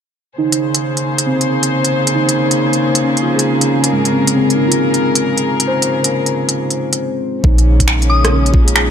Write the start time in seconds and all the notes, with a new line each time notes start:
0.37 C#3 A#3 D#4 G#4 C5
0.52 closed hi-hat
0.75 closed hi-hat
0.97 closed hi-hat
1.18 closed hi-hat
1.26 C4
1.41 closed hi-hat
1.63 closed hi-hat
1.85 closed hi-hat
2.07 closed hi-hat
2.15 D#4
2.29 closed hi-hat
2.51 closed hi-hat
2.73 closed hi-hat
2.95 closed hi-hat
3.03 C#4
3.17 closed hi-hat
3.22 F4
3.35 G#4, closed hi-hat
3.61 closed hi-hat
3.84 closed hi-hat
3.91 G#3 A#4
4.05 closed hi-hat
4.11 C4
4.27 closed hi-hat
4.36 C4
4.50 closed hi-hat
4.55 D#4
4.68 F4
4.72 closed hi-hat
4.94 closed hi-hat
5.15 closed hi-hat
5.38 closed hi-hat
5.60 closed hi-hat
5.67 C5
5.82 closed hi-hat
6.04 closed hi-hat
6.26 closed hi-hat
6.49 closed hi-hat
6.71 closed hi-hat
6.93 closed hi-hat
7.43 A#1 C#3 G#3 A#3 C#4 D#4, kick
7.58 closed hi-hat
7.80 kick, closed hi-hat
7.88 finger snap
8.02 closed hi-hat
8.10 D#6
8.25 cross-stick, closed hi-hat
8.33 C#4
8.46 closed hi-hat
8.52 F4, kick
8.64 G#4, closed hi-hat
8.76 finger snap